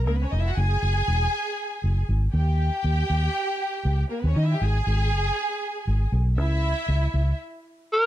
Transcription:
0.06 fingered electric bass C#2, string section A#3 A#4
0.15 string section B3 B4
0.23 string section C#4 C#5
0.32 fingered electric bass F1, string section D#4 D#5
0.39 string section E4 E5
0.48 string section F#4 F#5
0.57 fingered electric bass F#1, string section G#4 G#5
0.83 fingered electric bass F#1
1.08 fingered electric bass E1
1.84 fingered electric bass F#1
2.09 fingered electric bass G#1
2.33 fingered electric bass D#2, string section G4 G5
2.84 fingered electric bass D#2
3.10 fingered electric bass D#2
3.85 fingered electric bass C#2
4.10 string section A#3 A#4
4.19 string section B3 B4
4.24 fingered electric bass D#2, string section C#4 C#5
4.36 fingered electric bass D#3, string section D#4 D#5
4.44 string section E4 E5
4.53 string section G4 G5
4.61 fingered electric bass G#1, string section G#4 G#5
4.87 fingered electric bass G#1
5.12 fingered electric bass F#1
5.87 fingered electric bass G#1
6.12 fingered electric bass B1
6.37 fingered electric bass C#2, string section E4 E5
6.89 fingered electric bass C#2
7.14 fingered electric bass C#2
7.93 tenor saxophone A#4

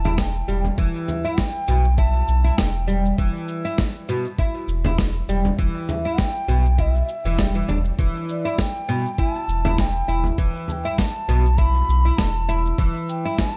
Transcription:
Already playing: sub bass E1, bansuri A5
0.05 oud E4, frame drum, shaker
0.18 bansuri G5, kick, snare, shaker
0.35 shaker
0.48 sub bass E1, oud G3, shaker
0.64 frame drum, shaker
0.78 sub bass E1, oud E3, kick, shaker
0.95 shaker
1.08 bansuri E5, frame drum, shaker
1.25 oud E4, shaker
1.38 bansuri G5, kick, snare, shaker
1.54 shaker
1.68 sub bass B1, oud B2, shaker
1.85 shaker
1.98 oud E4, bansuri A5, kick, shaker
2.14 shaker
2.28 sub bass B1, shaker
2.44 oud E4, shaker
2.58 sub bass E1, bansuri G5, kick, snare, shaker
2.75 shaker
2.88 oud G3, shaker
3.05 shaker
3.18 sub bass E1, oud E3, kick, shaker
3.35 shaker
3.48 shaker
3.65 oud E4, shaker
3.78 kick, snare, shaker
3.95 shaker
4.08 oud B2, shaker
4.25 shaker
4.38 oud E4, kick, shaker
4.55 shaker
4.68 sub bass E1, shaker
4.84 oud E4, frame drum, shaker
4.98 kick, snare, shaker
5.15 shaker
5.28 sub bass E1, oud G3, shaker
5.45 frame drum, shaker
5.59 sub bass E1, oud E3, kick, shaker
5.76 shaker
5.89 bansuri E5, frame drum, shaker
6.05 oud E4, shaker
6.18 bansuri G5, kick, snare, shaker
6.35 shaker
6.48 sub bass B1, oud B2, shaker
6.65 shaker
6.78 oud E4, bansuri D#5, kick, shaker
6.94 bansuri E5, shaker
7.09 shaker
7.25 sub bass E1, oud E3, shaker
7.39 oud G3, kick, snare, shaker
7.55 oud E3, shaker
7.68 sub bass E1, oud D4, frame drum, shaker
7.85 shaker
7.99 sub bass E1, oud E3, kick, shaker
8.15 shaker
8.29 bansuri D5, shaker
8.45 oud E4, shaker
8.58 bansuri G5, kick, snare, shaker
8.76 shaker
8.89 oud B2, shaker
9.06 shaker
9.18 oud E4, bansuri A5, kick, shaker
9.35 shaker
9.48 sub bass E1, shaker
9.65 oud E4, frame drum, shaker
9.78 bansuri G5, kick, snare, shaker
9.96 shaker
10.08 sub bass E1, oud E4, shaker
10.24 frame drum, shaker
10.38 sub bass E1, oud E3, kick, shaker
10.56 shaker
10.68 bansuri A5, frame drum, shaker
10.72 bansuri G5
10.85 oud E4, shaker
10.98 bansuri A5, kick, snare, shaker
11.15 shaker
11.28 sub bass B1, oud B2, shaker
11.46 shaker
11.58 oud E4, bansuri B5, kick, shaker
11.76 shaker
11.88 sub bass B1, shaker
12.05 oud E4, shaker
12.18 sub bass E1, bansuri A5, kick, snare, shaker
12.35 shaker
12.49 oud E4, shaker
12.66 shaker
12.78 sub bass E1, oud E3, kick, shaker
12.95 shaker
13.09 bansuri G5, shaker
13.25 oud E4, shaker
13.38 bansuri G#5, kick, snare, shaker
13.51 bansuri A5

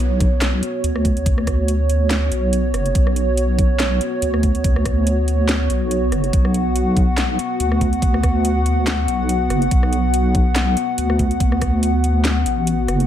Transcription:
Already playing: wobble bass B1, analog synth pad B3 F#4 C#5
0.21 kick, closed hi-hat
0.42 snare, clap, closed hi-hat
0.63 closed hi-hat
0.84 wobble bass D2, closed hi-hat
0.96 cross-stick
1.05 kick, closed hi-hat
1.17 closed hi-hat
1.26 kick, closed hi-hat
1.38 cross-stick
1.47 wobble bass D2, kick, cross-stick, closed hi-hat
1.68 closed hi-hat
1.90 closed hi-hat
2.11 snare, clap, closed hi-hat
2.32 wobble bass B1, closed hi-hat
2.53 closed hi-hat
2.74 wobble bass F#1, cross-stick, closed hi-hat
2.86 closed hi-hat
2.95 wobble bass B1, kick, closed hi-hat
3.07 cross-stick
3.16 closed hi-hat
3.37 closed hi-hat
3.59 kick, closed hi-hat
3.80 snare, clap, closed hi-hat
4.01 closed hi-hat
4.22 wobble bass D2, closed hi-hat
4.34 cross-stick
4.43 kick, closed hi-hat
4.55 closed hi-hat
4.64 kick, closed hi-hat
4.76 cross-stick
4.85 wobble bass D2, kick, cross-stick, closed hi-hat
5.07 closed hi-hat
5.28 closed hi-hat
5.49 snare, clap, closed hi-hat
5.70 wobble bass B1, closed hi-hat
5.91 closed hi-hat
6.12 wobble bass F#1, cross-stick, closed hi-hat
6.24 closed hi-hat
6.33 wobble bass B1, analog synth pad F#5, kick, closed hi-hat
6.45 cross-stick
6.54 closed hi-hat
6.76 closed hi-hat
6.97 kick, closed hi-hat
7.18 snare, clap, closed hi-hat
7.39 closed hi-hat
7.60 wobble bass D2, closed hi-hat
7.72 cross-stick
7.81 kick, closed hi-hat
7.93 closed hi-hat
8.02 kick, closed hi-hat
8.14 cross-stick
8.23 wobble bass D2, kick, cross-stick, closed hi-hat
8.45 closed hi-hat
8.66 closed hi-hat
8.87 snare, clap, closed hi-hat
9.08 wobble bass B1, closed hi-hat
9.29 closed hi-hat
9.50 wobble bass F#1, cross-stick, closed hi-hat
9.62 closed hi-hat
9.71 wobble bass B1, kick, closed hi-hat
9.83 cross-stick
9.93 closed hi-hat
10.14 closed hi-hat
10.35 kick, closed hi-hat
10.56 snare, clap, closed hi-hat
10.77 closed hi-hat
10.98 wobble bass D2, closed hi-hat
11.10 cross-stick
11.19 kick, closed hi-hat
11.31 closed hi-hat
11.40 kick, closed hi-hat
11.52 cross-stick
11.62 wobble bass D2, kick, cross-stick, closed hi-hat
11.83 closed hi-hat
12.04 closed hi-hat
12.25 snare, clap, closed hi-hat
12.46 wobble bass A1, closed hi-hat
12.67 closed hi-hat
12.88 wobble bass F#1, cross-stick, closed hi-hat
13.00 closed hi-hat

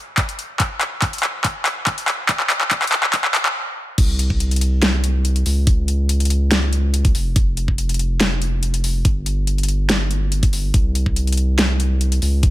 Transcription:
0.18 kick, clap, closed hi-hat
0.29 closed hi-hat
0.39 closed hi-hat
0.60 kick, clap, closed hi-hat
0.81 clap, closed hi-hat
1.02 kick, clap, closed hi-hat
1.13 closed hi-hat
1.18 closed hi-hat
1.23 clap, closed hi-hat
1.44 kick, clap, closed hi-hat
1.66 clap, closed hi-hat
1.87 kick, clap, closed hi-hat
1.98 closed hi-hat
2.08 clap, closed hi-hat
2.29 kick, clap, closed hi-hat
2.40 clap
2.50 clap, closed hi-hat
2.61 clap
2.71 kick, clap, closed hi-hat
2.82 clap, closed hi-hat
2.87 closed hi-hat
2.92 clap, closed hi-hat
3.03 clap
3.13 kick, clap, closed hi-hat
3.25 clap
3.35 clap, closed hi-hat
3.46 clap
3.98 sub bass C2, kick, closed hi-hat, crash
4.19 closed hi-hat
4.30 kick
4.40 closed hi-hat
4.51 closed hi-hat
4.56 closed hi-hat
4.61 closed hi-hat
4.82 snare, closed hi-hat
5.04 closed hi-hat
5.25 closed hi-hat
5.36 closed hi-hat
5.46 sub bass C#2, open hi-hat
5.67 kick, closed hi-hat
5.88 closed hi-hat
6.09 closed hi-hat
6.20 closed hi-hat
6.25 closed hi-hat
6.30 closed hi-hat
6.51 snare, closed hi-hat
6.73 closed hi-hat
6.94 closed hi-hat
7.05 kick, closed hi-hat
7.15 sub bass F1, open hi-hat
7.36 kick, closed hi-hat
7.57 closed hi-hat
7.68 kick
7.78 closed hi-hat
7.89 closed hi-hat
7.94 closed hi-hat
7.99 closed hi-hat
8.20 snare, closed hi-hat
8.42 closed hi-hat
8.63 closed hi-hat
8.74 closed hi-hat
8.84 open hi-hat
9.05 sub bass G1, kick, closed hi-hat
9.26 closed hi-hat
9.47 closed hi-hat
9.58 closed hi-hat
9.63 closed hi-hat
9.68 closed hi-hat
9.90 snare, closed hi-hat
10.11 closed hi-hat
10.32 closed hi-hat
10.43 kick, closed hi-hat
10.53 open hi-hat
10.74 sub bass C2, kick, closed hi-hat
10.95 closed hi-hat
11.06 kick
11.16 closed hi-hat
11.27 closed hi-hat
11.32 closed hi-hat
11.37 closed hi-hat
11.59 snare, closed hi-hat
11.80 closed hi-hat
12.01 closed hi-hat
12.12 closed hi-hat
12.22 sub bass C#2, open hi-hat
12.43 kick, closed hi-hat

